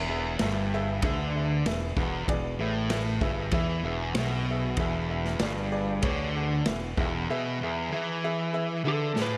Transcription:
Already playing: fingered electric bass E1, overdriven electric guitar E2
0.09 upright piano G#4 B4 E5
0.39 fingered electric bass G1, overdriven electric guitar G2, upright piano G#4 B4 E5, snare, ride bell
0.74 upright piano G#4 B4 E5
1.02 fingered electric bass D2, overdriven electric guitar D3, upright piano G#4 B4 E5, kick, ride bell
1.35 upright piano G#4 B4 E5
1.66 fingered electric bass E1, overdriven electric guitar E2, upright piano G#4 B4 E5, snare, ride bell
1.97 fingered electric bass E1, overdriven electric guitar E2, upright piano G#4 B4 F#5, kick
2.28 fingered electric bass E1, overdriven electric guitar E2, upright piano G#4 B4 D5, kick, ride bell
2.59 fingered electric bass A1, overdriven electric guitar A2, upright piano G#4 B4 E5
2.90 upright piano G#4 B4 E5, snare, ride bell
3.21 fingered electric bass G1, overdriven electric guitar G2, upright piano G#4 B4 E5, kick
3.51 fingered electric bass E2, overdriven electric guitar E3, upright piano G#4 B4 E5, kick, ride bell
3.83 fingered electric bass E1, overdriven electric guitar E2, upright piano G#4 B4 E5 G#5
4.02 upright piano G#5
4.14 fingered electric bass B1, overdriven electric guitar B2, upright piano G#4, snare, ride bell
4.19 upright piano B4 E5 F#5
4.50 upright piano G#4 B4 E5
4.77 fingered electric bass E1, overdriven electric guitar E2, upright piano G#4 B4 E5, kick, ride bell
5.09 upright piano G#4 B4 E5
5.25 snare
5.39 fingered electric bass G1, overdriven electric guitar G2, upright piano G#4 B4 D5, snare, ride bell
5.72 upright piano G#4 B4 D5
6.02 fingered electric bass D2, overdriven electric guitar D3, upright piano G#4 B4 C#5, kick, ride bell
6.36 upright piano G#4 B4 F#5
6.66 fingered electric bass E1, overdriven electric guitar E2, upright piano G#4 B4 E5, snare, ride bell
6.97 fingered electric bass E1, overdriven electric guitar E2, upright piano G#4 B4 E5, kick
7.30 overdriven electric guitar B2, upright piano G#4 B4 E5
7.62 overdriven electric guitar E2, upright piano G#4 B4 E5
7.92 overdriven electric guitar E3, upright piano G#4 B4 E5
8.24 upright piano G#4 B4 E5
8.53 upright piano G#4 B4 E5
8.84 overdriven electric guitar D3, upright piano G#4 B4 E5, lead electric guitar A4
9.16 overdriven electric guitar A2, upright piano G#4 B4 E5, snare
9.22 lead electric guitar B4
9.32 upright piano G#5

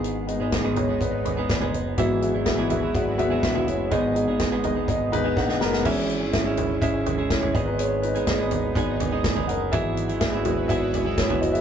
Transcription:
Already playing: picked electric bass G#1, clean electric guitar G#2 D#3 G#3 B3 D#4 G#4, grand piano G#2 B3 D#4 G#4 D#5, analog synth pad G#3 B3 D#4
0.04 closed hi-hat
0.27 grand piano B3 D#4 G#4 D#5, closed hi-hat
0.40 picked electric bass G#1, clean electric guitar G#3 B3 D#4 G#4
0.51 grand piano B3 D#4 G#4 D#5, kick, snare, closed hi-hat
0.64 clean electric guitar G#2 D#3 G#3 B3 D#4 G#4
0.76 grand piano B3 D#4 G#4 C#5, closed hi-hat, floor tom
0.89 clean electric guitar G#3 B3 D#4 G#4
1.00 picked electric bass G#1, grand piano B3 D#4 G#4 B4, kick, closed hi-hat
1.25 grand piano B5, closed hi-hat, floor tom
1.37 clean electric guitar G#3 B3 D#4 G#4
1.49 picked electric bass G#1, grand piano G#5, kick, snare, closed hi-hat
1.61 clean electric guitar G#3 B3 D#4 G#4, floor tom
1.74 picked electric bass F#1, grand piano D#5, closed hi-hat
1.97 picked electric bass G#1, grand piano G#2 B3 F#4 G#4 E5, clean electric guitar G#2 E3 F#3 B3 E4 G#4, analog synth pad G#3 E4 F#4 B4, kick, closed hi-hat
2.21 grand piano B3 F#4 G#4 E5, closed hi-hat
2.34 picked electric bass G#1, clean electric guitar F#3 B3 E4 G#4
2.45 grand piano B3 F#4 G#4 E5, kick, snare, closed hi-hat
2.58 clean electric guitar G#2 E3 F#3 B3 E4 G#4
2.69 grand piano B3 F#4 G#4 E5, closed hi-hat, floor tom
2.82 clean electric guitar F#3 B3 E4 G#4
2.94 picked electric bass G#1, grand piano B3 F#4 G#4 E5, kick, closed hi-hat
3.18 grand piano B3 F#4 G#4 E5, closed hi-hat, floor tom
3.30 clean electric guitar F#3 B3 E4 G#4
3.42 picked electric bass A#1, grand piano B3 F#4 G#4 E5, kick, snare, closed hi-hat
3.55 clean electric guitar F#3 B3 E4 G#4, floor tom
3.67 picked electric bass F#1, grand piano B3 F#4 G#4 C#5, closed hi-hat
3.91 picked electric bass G#1, clean electric guitar G#2 D#3 G#3 B3 D#4 G#4, grand piano G#2 B3 D#4 G#4 D#5, analog synth pad B3 D#4, kick, closed hi-hat
4.15 grand piano B3 D#4 G#4 D#5, closed hi-hat
4.28 picked electric bass G#1, clean electric guitar G#3 B3 D#4 G#4
4.40 grand piano B3 D#4 G#4 D#5, kick, snare, closed hi-hat
4.52 clean electric guitar G#2 D#3 G#3 B3 D#4 G#4
4.64 grand piano B3 D#4 G#4 D#5, closed hi-hat, floor tom
4.75 clean electric guitar G#3 B3 D#4 G#4
4.88 picked electric bass G#1, grand piano B3 D#4 G#4 D#5, kick, closed hi-hat
5.12 grand piano B3 D#4 G#4 B4, closed hi-hat, floor tom
5.24 clean electric guitar G#3 B3 D#4 G#4
5.36 picked electric bass A#1, grand piano B3 D#4 G#4 F#5, kick, snare
5.49 clean electric guitar G#3 B3 D#4 G#4, snare
5.60 picked electric bass F#1, grand piano B3 D#4 G#4 A#4 F#5, snare
5.73 snare
5.84 picked electric bass G#1, clean electric guitar G#2 E3 G#3 C#4 E4 G#4, analog synth pad G#3 C#4 E4, grand piano G#3 C#4 E4 G#4 E5, kick, crash
6.10 closed hi-hat
6.21 clean electric guitar G#3 C#4 E4 G#4
6.33 picked electric bass G#1, grand piano G#4 E5, kick, snare, closed hi-hat
6.45 clean electric guitar G#3 C#4 E4 G#4
6.57 closed hi-hat, floor tom
6.81 picked electric bass G#1, clean electric guitar G#3 C#4 E4 G#4, grand piano G#4 E5, kick, closed hi-hat
7.06 closed hi-hat, floor tom
7.18 clean electric guitar G#3 C#4 E4 G#4
7.30 grand piano E4 C#5, kick, snare, closed hi-hat
7.41 clean electric guitar G#3 C#4 E4 G#4, floor tom
7.54 picked electric bass G#1, clean electric guitar G#2 D#3 G#3 B3 D#4 G#4, analog synth pad B3 D#4, grand piano G#4 D#5, kick, closed hi-hat
7.66 grand piano D#4 B4
7.78 grand piano G#4 C#5, closed hi-hat
8.02 grand piano D#4 B4, closed hi-hat
8.15 clean electric guitar G#3 B3 D#4 G#4, closed hi-hat
8.27 picked electric bass G#1, grand piano G#3 B3 D#4, kick, snare, closed hi-hat
8.39 clean electric guitar G#3 B3 D#4 G#4
8.51 closed hi-hat, floor tom
8.75 picked electric bass G#1, clean electric guitar G#3 B3 D#4 G#4, kick, closed hi-hat
9.00 closed hi-hat, floor tom
9.12 clean electric guitar G#3 B3 D#4 G#4
9.24 kick, snare, closed hi-hat
9.36 clean electric guitar G#3 B3 D#4 G#4, floor tom
9.47 picked electric bass F#1, grand piano A#4 F#5, closed hi-hat
9.72 picked electric bass G#1, clean electric guitar G#2 E3 F#3 B3 E4 G#4, analog synth pad G#3 E4 F#4 B4, grand piano G#4 E5, kick, closed hi-hat
9.97 closed hi-hat
10.08 clean electric guitar F#3 B3 E4 G#4, closed hi-hat
10.20 picked electric bass G#1, grand piano G#4 E5, kick, snare, closed hi-hat
10.32 clean electric guitar F#3 B3 E4 G#4
10.45 grand piano F#3 G#3 E4, closed hi-hat, floor tom
10.68 picked electric bass G#1, clean electric guitar F#3 B3 E4 G#4, grand piano G#4 E5, kick, closed hi-hat
10.94 closed hi-hat, floor tom
11.05 clean electric guitar F#3 B3 E4 G#4
11.17 grand piano E4 C#5, kick, snare, closed hi-hat
11.29 clean electric guitar F#3 B3 E4 G#4, floor tom
11.41 picked electric bass F#1, grand piano F#4 D#5, closed hi-hat
11.53 grand piano G#4 E5, closed hi-hat

